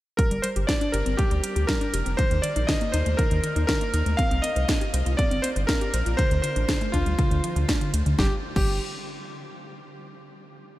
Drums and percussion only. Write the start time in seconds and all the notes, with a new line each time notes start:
0.19 kick, closed hi-hat
0.31 closed hi-hat
0.44 closed hi-hat
0.56 closed hi-hat
0.69 kick, snare, closed hi-hat
0.81 closed hi-hat
0.94 closed hi-hat
1.06 closed hi-hat
1.19 kick, closed hi-hat
1.31 closed hi-hat
1.44 closed hi-hat
1.56 closed hi-hat
1.69 kick, snare, closed hi-hat
1.81 closed hi-hat
1.94 closed hi-hat
2.06 closed hi-hat
2.19 kick, closed hi-hat
2.31 closed hi-hat
2.44 closed hi-hat
2.56 closed hi-hat
2.69 kick, snare, closed hi-hat
2.81 closed hi-hat
2.94 closed hi-hat
3.06 closed hi-hat
3.19 kick, closed hi-hat
3.31 closed hi-hat
3.44 closed hi-hat
3.56 closed hi-hat
3.69 kick, snare, closed hi-hat
3.81 closed hi-hat
3.94 closed hi-hat
4.06 closed hi-hat
4.19 kick, closed hi-hat
4.31 closed hi-hat
4.44 closed hi-hat
4.56 closed hi-hat
4.69 kick, snare, closed hi-hat
4.81 closed hi-hat
4.94 closed hi-hat
5.06 closed hi-hat
5.19 kick, closed hi-hat
5.31 closed hi-hat
5.44 closed hi-hat
5.56 closed hi-hat
5.69 kick, snare, closed hi-hat
5.81 closed hi-hat
5.94 closed hi-hat
6.06 closed hi-hat
6.19 kick, closed hi-hat
6.31 closed hi-hat
6.44 closed hi-hat
6.56 closed hi-hat
6.69 kick, snare, closed hi-hat
6.81 closed hi-hat
6.94 kick, closed hi-hat
7.06 closed hi-hat
7.19 kick, closed hi-hat
7.31 closed hi-hat
7.44 closed hi-hat
7.56 closed hi-hat
7.69 kick, snare, closed hi-hat
7.81 closed hi-hat
7.94 closed hi-hat
8.06 closed hi-hat
8.19 kick, snare
8.56 kick, crash